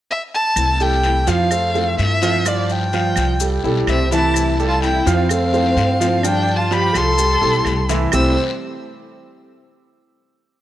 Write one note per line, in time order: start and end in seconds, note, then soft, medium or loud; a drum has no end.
0.11 0.21 E5 loud
0.35 0.84 A5 loud
0.56 1.23 C2 medium
0.56 1.03 C3 medium
0.56 1.02 E3 medium
0.56 1.03 A3 medium
0.56 1.03 C4 medium
0.56 1.04 E4 medium
0.56 long guiro medium
0.56 claves medium
0.56 maracas medium
0.80 1.19 G3 medium
0.80 1.19 G4 medium
0.80 1.19 A4 medium
0.80 1.31 G5 loud
0.80 maracas soft
1.03 1.50 E3 soft
1.03 1.50 A3 medium
1.03 1.51 C4 medium
1.03 1.51 E4 medium
1.03 short guiro medium
1.03 maracas soft
1.27 1.95 F2 medium
1.27 1.47 F3 medium
1.27 1.47 F4 medium
1.27 1.47 F5 medium
1.27 1.99 F5 loud
1.27 short guiro medium
1.27 maracas medium
1.51 1.71 A3 medium
1.51 1.71 A4 medium
1.51 1.71 C5 medium
1.51 muted nylon-string guitar stroke medium
1.51 long guiro medium
1.51 claves medium
1.51 maracas medium
1.74 1.96 E3 soft
1.74 2.14 A3 medium
1.74 1.97 A3 medium
1.74 1.97 C4 medium
1.74 1.97 F4 medium
1.74 2.14 A4 medium
1.74 2.14 C5 medium
1.74 maracas soft
1.97 3.11 G2 medium
1.97 2.21 E3 soft
1.97 2.21 A3 soft
1.97 2.21 C4 soft
1.97 2.20 F4 medium
1.97 2.49 E5 loud
1.97 short guiro medium
1.97 maracas soft
2.21 2.45 E3 medium
2.21 2.42 F3 medium
2.21 2.45 A3 medium
2.21 2.45 C4 medium
2.21 2.45 F4 medium
2.21 2.42 F4 medium
2.21 2.42 F5 medium
2.21 short guiro medium
2.21 maracas medium
2.45 2.85 F3 medium
2.45 2.91 G3 medium
2.45 2.93 B3 medium
2.45 2.85 F4 medium
2.45 2.93 F4 medium
2.45 2.73 D5 medium
2.45 2.85 F5 medium
2.45 long guiro medium
2.45 claves medium
2.45 maracas medium
2.69 3.65 G5 medium
2.69 maracas soft
2.93 3.32 F3 medium
2.93 3.39 G3 medium
2.93 3.40 B3 medium
2.93 3.32 F4 medium
2.93 3.40 F4 medium
2.93 3.33 F5 medium
2.93 short guiro medium
2.93 maracas soft
3.16 3.61 C2 medium
3.16 short guiro medium
3.16 claves medium
3.16 maracas medium
3.40 3.60 G3 medium
3.40 3.60 G4 medium
3.40 3.60 A4 medium
3.40 muted nylon-string guitar stroke medium
3.40 long guiro medium
3.40 maracas medium
3.63 3.86 B1 medium
3.63 3.86 E3 medium
3.63 4.03 G3 medium
3.63 3.87 A3 medium
3.63 3.87 C4 medium
3.63 3.87 E4 medium
3.63 4.03 G4 medium
3.63 4.04 A4 medium
3.63 maracas soft
3.87 4.99 C2 medium
3.87 4.10 E3 soft
3.87 4.11 A3 soft
3.87 4.10 C4 medium
3.87 4.11 C4 medium
3.87 4.10 E4 medium
3.87 4.11 E5 medium
3.87 short guiro medium
3.87 claves medium
3.87 maracas soft
4.11 4.51 E3 medium
4.11 4.34 E3 medium
4.11 4.35 A3 medium
4.11 4.34 C4 medium
4.11 4.55 E4 medium
4.11 4.34 E4 medium
4.11 4.51 E4 medium
4.11 4.51 E5 medium
4.11 4.56 A5 medium
4.11 short guiro medium
4.11 maracas medium
4.34 4.81 C3 medium
4.34 4.81 E3 medium
4.34 4.82 A3 medium
4.34 4.82 C4 medium
4.34 4.82 E4 medium
4.34 long guiro medium
4.34 claves medium
4.34 maracas medium
4.60 4.98 G3 medium
4.60 4.98 G4 medium
4.60 4.98 A4 medium
4.60 maracas soft
4.67 4.81 F4 medium
4.67 4.82 A5 medium
4.82 5.29 E3 soft
4.82 5.29 A3 soft
4.82 5.29 C4 medium
4.82 5.12 E4 medium
4.82 5.29 E4 medium
4.82 5.12 G5 medium
4.82 short guiro medium
4.82 maracas soft
5.06 5.73 F2 medium
5.06 5.26 F3 medium
5.06 5.26 F4 medium
5.06 5.26 F5 medium
5.06 short guiro medium
5.06 maracas medium
5.14 6.20 C4 medium
5.14 6.26 F5 medium
5.29 5.50 A3 medium
5.29 5.50 A4 medium
5.29 5.50 C5 medium
5.29 muted nylon-string guitar stroke medium
5.29 long guiro medium
5.29 claves medium
5.29 maracas medium
5.53 5.76 E3 medium
5.53 5.92 A3 medium
5.53 5.77 A3 medium
5.53 5.76 C4 medium
5.53 5.76 F4 medium
5.53 5.92 A4 medium
5.53 5.93 C5 medium
5.53 maracas soft
5.76 6.88 G2 medium
5.76 6.00 E3 soft
5.76 6.00 A3 medium
5.76 6.00 C4 medium
5.76 6.00 F4 medium
5.76 short guiro medium
5.76 maracas soft
6.00 6.24 E3 medium
6.00 6.20 F3 medium
6.00 6.23 A3 medium
6.00 6.24 C4 medium
6.00 6.20 F4 medium
6.00 6.24 F4 medium
6.00 6.20 F5 medium
6.00 short guiro medium
6.00 maracas medium
6.23 6.63 F3 medium
6.23 6.70 G3 medium
6.23 6.71 B3 medium
6.23 6.56 D4 medium
6.23 6.63 F4 medium
6.23 6.71 F4 medium
6.23 6.63 F5 medium
6.23 6.58 G5 loud
6.23 long guiro medium
6.23 claves medium
6.23 maracas medium
6.48 maracas soft
6.56 6.72 F4 medium
6.56 6.74 A5 medium
6.71 7.10 F3 medium
6.71 7.18 G3 soft
6.71 7.18 B3 soft
6.71 7.10 F4 medium
6.71 7.19 F4 medium
6.71 6.95 G4 medium
6.71 7.10 F5 medium
6.71 6.99 B5 loud
6.71 short guiro medium
6.71 maracas soft
6.94 7.39 C2 medium
6.94 7.90 A4 loud
6.94 7.90 C6 loud
6.94 short guiro medium
6.94 claves medium
6.94 maracas medium
7.18 7.38 G3 medium
7.18 7.38 G4 medium
7.18 7.38 A4 medium
7.18 muted nylon-string guitar stroke medium
7.18 long guiro medium
7.18 maracas medium
7.41 7.64 B1 medium
7.41 7.63 E3 medium
7.41 7.80 G3 medium
7.41 7.64 A3 medium
7.41 7.65 C4 medium
7.41 7.64 E4 medium
7.41 7.81 G4 medium
7.41 7.81 A4 medium
7.41 maracas soft
7.64 8.07 C2 medium
7.64 7.88 E3 soft
7.64 7.88 A3 soft
7.64 7.89 C4 medium
7.64 7.88 E4 medium
7.64 short guiro medium
7.64 claves medium
7.64 maracas soft
7.89 8.09 E3 medium
7.89 8.12 E3 medium
7.89 8.12 A3 medium
7.89 8.12 C4 medium
7.89 8.09 E4 medium
7.89 8.12 E4 medium
7.89 8.09 E5 medium
7.89 short guiro medium
7.89 maracas medium
8.12 8.35 C2 medium
8.12 8.35 C3 medium
8.12 8.32 C3 medium
8.12 8.32 E3 medium
8.12 8.35 G3 medium
8.12 8.35 A3 medium
8.12 8.32 A3 medium
8.12 8.35 C4 medium
8.12 8.33 C4 medium
8.12 8.35 E4 medium
8.12 8.33 E4 medium
8.12 8.35 G4 medium
8.12 8.35 C5 medium
8.12 8.35 E6 medium
8.12 long guiro medium
8.12 claves medium
8.12 maracas medium